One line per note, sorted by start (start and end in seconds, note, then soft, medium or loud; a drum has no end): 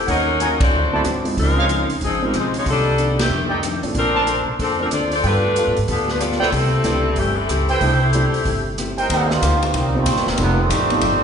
0.07 0.70 D#2 medium
0.07 0.29 D#3 soft
0.07 0.58 F#3 medium
0.07 0.29 A#3 soft
0.07 0.30 C#4 soft
0.07 0.57 C#4 medium
0.07 0.21 D#4 medium
0.07 0.57 D#4 medium
0.07 0.31 F#4 soft
0.07 0.21 A#4 medium
0.07 0.57 A#4 medium
0.07 0.21 C#5 medium
0.07 0.21 F#5 medium
0.07 kick soft
0.07 open hi-hat soft
0.39 0.61 D#3 medium
0.39 0.62 A#3 medium
0.39 0.62 C#4 medium
0.39 0.54 D#4 medium
0.39 0.62 F#4 medium
0.39 0.54 A#4 medium
0.39 0.54 C#5 medium
0.39 0.54 G#5 medium
0.39 closed hi-hat soft
0.60 1.02 C4 medium
0.60 1.02 F#4 medium
0.60 1.02 A4 medium
0.60 1.02 D5 medium
0.60 kick medium
0.60 ride medium
0.72 1.03 D2 medium
0.72 0.94 D3 soft
0.72 0.94 F#3 soft
0.72 0.95 C4 soft
0.72 0.96 E4 soft
0.93 1.04 F#3 medium
0.93 1.04 A3 medium
0.93 1.04 C4 medium
0.93 1.01 E4 medium
0.93 1.04 E4 medium
0.93 1.01 C5 medium
0.93 1.01 D5 medium
0.93 1.01 A5 medium
1.04 1.35 G#2 medium
1.04 1.26 D3 medium
1.04 1.26 F#3 medium
1.04 1.27 C4 medium
1.04 1.27 E4 medium
1.04 cross-stick medium
1.04 closed hi-hat soft
1.24 1.67 F3 medium
1.24 1.67 G#3 soft
1.24 1.67 C4 soft
1.24 1.67 D#4 medium
1.24 open hi-hat soft
1.37 1.86 C#2 medium
1.37 1.59 C#3 soft
1.37 1.59 F3 soft
1.37 1.88 G#3 medium
1.37 1.60 C4 soft
1.37 1.88 D#4 medium
1.37 1.61 D#4 soft
1.37 1.87 F4 medium
1.37 1.87 A#4 loud
1.37 kick soft
1.37 open hi-hat soft
1.58 1.66 D#4 medium
1.58 1.66 C5 medium
1.58 1.66 C#5 medium
1.58 1.66 F5 medium
1.69 1.91 C#3 medium
1.69 1.91 F3 medium
1.69 1.91 C4 medium
1.69 1.92 D#4 medium
1.69 closed hi-hat soft
1.90 muted upright bass stroke soft
1.90 open hi-hat soft
2.01 2.31 G#1 medium
2.01 2.23 C#3 soft
2.01 2.24 F3 soft
2.01 2.22 D#4 medium
2.01 2.22 G#4 medium
2.01 kick soft
2.01 open hi-hat soft
2.05 2.22 F3 medium
2.05 2.22 C4 medium
2.05 2.25 C4 medium
2.05 2.25 D#4 medium
2.22 2.33 F3 medium
2.22 2.35 G3 medium
2.22 2.33 G#3 medium
2.22 2.33 C4 medium
2.22 2.35 C4 medium
2.22 2.33 D#4 medium
2.22 2.36 D#4 medium
2.22 2.36 A#4 medium
2.34 2.63 B1 medium
2.34 2.55 C#3 soft
2.34 2.55 F3 medium
2.34 2.56 C4 medium
2.34 2.56 D#4 medium
2.34 2.54 C5 medium
2.34 cross-stick medium
2.34 closed hi-hat soft
2.38 2.55 G#3 medium
2.38 2.55 D#4 medium
2.38 2.55 F4 medium
2.54 2.67 G#3 medium
2.54 2.67 D#4 medium
2.54 2.67 F4 medium
2.54 open hi-hat soft
2.59 2.67 C#5 medium
2.66 3.27 C2 medium
2.66 2.87 C3 soft
2.66 2.88 D#3 soft
2.66 2.88 A#3 soft
2.66 2.89 D4 soft
2.66 kick soft
2.66 open hi-hat soft
2.70 3.17 G3 medium
2.70 3.17 D4 medium
2.70 3.17 D#4 medium
2.70 3.17 A4 loud
2.98 3.20 C3 medium
2.98 3.20 D#3 medium
2.98 3.20 A#3 medium
2.98 3.21 D4 medium
2.98 closed hi-hat soft
3.19 3.61 D#3 medium
3.19 3.61 A3 medium
3.19 3.61 C4 medium
3.19 3.61 G4 medium
3.19 snare medium
3.19 ride medium
3.29 3.78 F2 medium
3.29 3.52 F2 soft
3.29 3.52 D#3 soft
3.29 3.53 A3 soft
3.33 3.53 D4 soft
3.50 3.58 D#4 medium
3.50 3.58 A4 medium
3.50 3.58 D5 medium
3.50 3.58 G5 medium
3.63 3.84 F2 medium
3.63 3.85 D#3 medium
3.63 3.85 A3 medium
3.63 3.85 D4 medium
3.63 cross-stick medium
3.63 closed hi-hat medium
3.83 3.94 A1 medium
3.83 4.24 F3 medium
3.83 4.25 A3 soft
3.83 4.25 C4 soft
3.83 4.25 D4 medium
3.83 open hi-hat soft
3.95 4.43 A#1 medium
3.95 4.45 F3 medium
3.95 4.16 A#3 soft
3.95 4.45 C4 medium
3.95 4.16 D4 soft
3.95 4.45 D4 medium
3.95 4.17 A4 soft
3.95 4.45 A#4 loud
3.95 4.18 C5 soft
3.95 kick soft
3.95 open hi-hat soft
4.14 4.23 D4 medium
4.14 4.23 A#4 medium
4.14 4.23 C5 medium
4.14 4.23 A5 medium
4.27 4.48 A#3 medium
4.27 4.49 D4 medium
4.27 4.49 A4 medium
4.27 4.49 C5 medium
4.27 closed hi-hat soft
4.48 4.58 B1 medium
4.59 4.89 F2 medium
4.59 4.79 F3 medium
4.59 4.81 A#3 soft
4.59 4.79 C4 medium
4.59 4.81 D4 soft
4.59 4.79 D4 medium
4.59 4.81 A4 soft
4.59 4.79 A4 medium
4.59 4.82 C5 soft
4.59 kick soft
4.59 open hi-hat soft
4.79 4.90 F3 medium
4.79 4.87 F3 medium
4.79 4.90 A3 soft
4.79 4.90 C4 soft
4.79 4.90 D4 medium
4.79 4.87 D4 medium
4.79 4.87 A#4 medium
4.84 4.88 C4 medium
4.91 5.21 D2 medium
4.91 5.13 A#3 soft
4.91 5.11 C4 medium
4.91 5.14 D4 medium
4.91 5.12 F4 medium
4.91 5.11 A4 medium
4.91 5.14 A4 medium
4.91 5.14 C5 medium
4.91 5.12 D5 medium
4.91 cross-stick medium
4.91 closed hi-hat medium
5.12 5.24 C4 medium
5.12 5.24 F4 medium
5.12 5.24 A4 medium
5.12 5.24 D5 medium
5.12 open hi-hat soft
5.24 5.63 G2 medium
5.24 5.46 G3 soft
5.24 5.78 A3 loud
5.24 5.46 B3 soft
5.24 5.77 D4 medium
5.24 5.37 F4 medium
5.24 5.77 F4 medium
5.24 5.47 F4 soft
5.24 5.38 A4 medium
5.24 5.38 B4 medium
5.24 5.78 B4 loud
5.24 5.38 G5 medium
5.24 kick soft
5.24 open hi-hat soft
5.28 5.47 A4 soft
5.56 5.78 G3 medium
5.56 5.78 B3 medium
5.56 5.78 F4 medium
5.56 5.79 A4 medium
5.56 closed hi-hat soft
5.67 5.77 A2 medium
5.77 5.88 G#2 medium
5.77 open hi-hat soft
5.87 6.37 D2 medium
5.87 6.08 F3 medium
5.87 6.09 G3 soft
5.87 6.10 B3 soft
5.87 6.08 B3 medium
5.87 6.08 D4 medium
5.87 6.10 F4 soft
5.87 6.08 A4 medium
5.87 6.11 A4 soft
5.87 kick soft
5.87 open hi-hat soft
6.08 6.21 A3 medium
6.08 6.21 D4 medium
6.08 6.20 F4 medium
6.08 6.22 B4 medium
6.08 snare soft
6.20 6.41 G3 medium
6.20 6.42 B3 medium
6.20 6.39 B3 medium
6.20 6.39 F4 medium
6.20 6.42 F4 medium
6.20 6.39 A4 medium
6.20 6.43 A4 medium
6.20 6.39 D5 medium
6.20 cross-stick medium
6.20 closed hi-hat soft
6.32 snare soft
6.40 6.51 B1 medium
6.40 6.51 B3 medium
6.40 6.48 E4 medium
6.40 6.52 F4 medium
6.40 6.48 A4 medium
6.40 6.50 A4 medium
6.40 6.48 C5 medium
6.40 6.51 D5 loud
6.40 6.48 G5 loud
6.40 snare soft
6.52 6.82 C2 medium
6.52 6.74 C3 soft
6.52 7.16 G3 medium
6.52 6.75 G3 soft
6.52 6.75 A3 soft
6.52 7.17 C4 medium
6.52 7.16 E4 medium
6.52 7.16 A4 loud
6.52 kick soft
6.52 open hi-hat soft
6.56 6.75 E4 soft
6.84 7.14 C#2 medium
6.84 7.06 C3 medium
6.84 7.33 G3 soft
6.84 7.06 G3 medium
6.84 7.33 A3 soft
6.84 7.06 A3 medium
6.84 7.33 D4 soft
6.84 7.33 E4 soft
6.84 7.06 E4 medium
6.84 snare soft
6.84 closed hi-hat soft
7.16 7.46 G1 medium
7.16 7.38 C3 medium
7.16 7.37 E3 medium
7.16 7.39 G3 soft
7.16 7.37 A3 medium
7.16 7.36 C4 medium
7.16 7.38 G4 medium
7.16 kick soft
7.16 open hi-hat soft
7.20 7.40 A3 soft
7.20 7.40 E4 soft
7.37 7.68 G3 medium
7.37 7.68 C4 medium
7.37 7.68 E4 medium
7.37 7.69 A4 medium
7.49 7.79 C#2 medium
7.49 7.71 C3 soft
7.49 7.71 G3 medium
7.49 7.72 A3 soft
7.49 7.72 E4 medium
7.49 cross-stick medium
7.49 closed hi-hat medium
7.69 7.81 G3 medium
7.69 7.81 C4 medium
7.69 8.10 E4 medium
7.69 7.81 E4 medium
7.69 8.10 A4 medium
7.69 7.81 B4 medium
7.69 8.11 C5 medium
7.69 8.11 G5 medium
7.69 open hi-hat soft
7.80 8.30 C2 loud
7.80 8.02 C3 soft
7.80 7.99 G3 medium
7.80 8.03 G3 soft
7.80 7.99 A3 soft
7.80 8.74 A3 medium
7.80 8.04 A3 soft
7.80 7.99 D4 medium
7.80 8.00 E4 medium
7.80 8.74 E4 medium
7.80 8.04 E4 soft
7.80 8.74 G4 medium
7.80 8.74 C5 medium
7.80 kick soft
7.80 open hi-hat soft
8.13 8.35 C3 medium
8.13 8.32 G3 medium
8.13 8.35 G3 medium
8.13 8.32 A3 soft
8.13 8.36 A3 medium
8.13 8.32 D4 medium
8.13 8.32 E4 medium
8.13 8.36 E4 medium
8.13 closed hi-hat soft
8.34 muted upright bass stroke soft
8.34 open hi-hat soft
8.45 9.06 G1 medium
8.45 8.67 C3 soft
8.45 8.67 G3 medium
8.45 8.68 A3 medium
8.45 8.68 E4 soft
8.45 kick soft
8.45 open hi-hat soft
8.78 8.99 C3 medium
8.78 9.00 G3 medium
8.78 9.00 A3 medium
8.78 9.01 E4 medium
8.78 cross-stick medium
8.78 closed hi-hat soft
8.97 9.39 D#4 medium
8.97 9.39 A#4 medium
8.97 9.39 C5 medium
8.97 9.39 G5 medium
8.97 open hi-hat soft
9.10 9.41 D#2 medium
9.10 9.31 D#3 soft
9.10 9.29 G3 medium
9.10 9.29 A#3 medium
9.10 9.32 A#3 soft
9.10 9.29 C4 medium
9.10 9.33 C4 soft
9.10 9.29 D#4 medium
9.10 9.33 G4 soft
9.10 kick soft
9.10 ride medium
9.30 9.63 A#3 medium
9.30 9.62 C4 medium
9.30 9.63 D#4 medium
9.30 9.63 F4 medium
9.30 snare soft
9.42 9.73 D2 medium
9.42 9.64 D#3 medium
9.42 9.64 A#3 medium
9.42 9.64 C4 medium
9.42 9.65 G4 medium
9.42 kick soft
9.42 hi-hat pedal medium
9.42 ride medium
9.62 9.75 D#3 medium
9.62 9.75 A#3 medium
9.62 9.75 C4 medium
9.62 9.75 G4 medium
9.62 ride soft
9.74 10.05 C2 medium
9.74 9.95 D#3 soft
9.74 9.95 G3 medium
9.74 9.96 A#3 medium
9.74 9.95 A#3 medium
9.74 9.95 C4 medium
9.74 9.97 C4 soft
9.74 9.95 D#4 medium
9.74 kick soft
9.74 ride medium
9.78 9.97 G4 soft
9.94 10.27 D#3 medium
9.94 10.05 G3 medium
9.94 10.27 G3 medium
9.94 10.05 A#3 soft
9.94 10.27 A#3 medium
9.94 10.05 C4 medium
9.94 10.28 C4 medium
9.94 10.05 D#4 medium
9.94 10.05 F4 medium
10.06 10.15 A#1 medium
10.06 10.27 D#3 medium
10.06 10.28 A#3 medium
10.06 10.28 C4 medium
10.06 10.29 G4 medium
10.06 kick soft
10.06 hi-hat pedal soft
10.06 ride medium
10.15 10.26 G1 soft
10.15 snare soft
10.26 10.37 D#1 medium
10.26 10.39 C3 medium
10.26 10.39 D#3 medium
10.26 10.39 G3 medium
10.26 10.39 A#3 medium
10.26 snare medium
10.37 10.69 F1 medium
10.37 10.58 C3 medium
10.37 10.58 D#3 medium
10.37 10.59 F3 soft
10.37 10.56 G3 medium
10.37 10.58 G3 medium
10.37 10.57 A3 medium
10.37 10.60 A3 soft
10.37 10.58 B3 medium
10.37 10.57 C4 soft
10.37 10.57 D#4 medium
10.37 10.61 D#4 soft
10.37 10.57 F4 medium
10.37 kick soft
10.37 ride medium
10.42 10.61 G4 medium
10.61 11.24 D#3 medium
10.61 11.24 G3 medium
10.61 11.24 A3 medium
10.61 11.24 C4 loud
10.69 11.01 A1 medium
10.69 10.91 F3 medium
10.69 10.92 A3 medium
10.69 10.92 D#4 medium
10.69 10.92 G4 medium
10.69 kick soft
10.69 hi-hat pedal medium
10.69 ride medium
10.90 11.01 G3 medium
10.90 11.01 A3 medium
10.90 11.01 C4 medium
10.90 11.01 D#4 medium
10.90 11.01 F4 medium
10.90 ride soft
11.01 11.24 G1 medium
11.01 11.23 F3 soft
11.01 11.24 A3 medium
11.01 11.24 D#4 medium
11.01 11.24 G4 medium
11.01 kick soft
11.01 ride medium